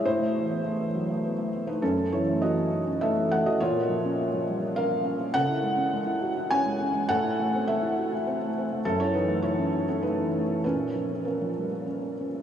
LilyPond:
<<
  \new Staff \with { instrumentName = "Felt piano" } { \time 3/4 \key fis \dorian \tempo 4 = 102 <e' c''>2~ <e' c''>8. <dis' b'>16 | <cis' a'>8 <e' cis''>8 <fis' dis''>4 <a' e''>8 <a' fis''>16 <fis' dis''>16 | <eis' cis''>2 <ais' eis''>4 | <a' fis''>2 <cis'' gis''>4 |
<a' fis''>4 <a' e''>4 r4 | <cis' a'>16 <e' cis''>16 <dis' b'>8 <e' cis''>8. <cis' a'>16 <dis' b'>4 | <cis' b'>4 <cis' ais'>4 r4 | }
  \new Staff \with { instrumentName = "Felt piano" } { \time 3/4 \key fis \dorian a,16 a16 e16 b16 a16 e16 fis16 a16 b16 a16 b16 a16 | fis,16 cis'16 e16 a16 e16 cis'16 dis'16 cis'16 a16 e16 a16 e16 | ais,16 ais16 eis16 cis'16 ais16 eis16 g16 ais16 cis'16 ais16 cis'16 ais16 | cis16 e'16 gis16 cis'16 gis16 e'16 fis'16 e'16 cis'16 gis16 cis'16 gis16 |
a,16 e'16 a16 c'16 a16 e'16 fis'16 e'16 c'16 a16 c'16 a16 | fis,16 cis'16 e16 a16 e16 cis'16 dis'16 r16 a16 e16 a16 e16 | ais,16 ais16 eis16 cis'16 ais16 eis16 g16 ais16 cis'16 ais16 cis'16 ais16 | }
>>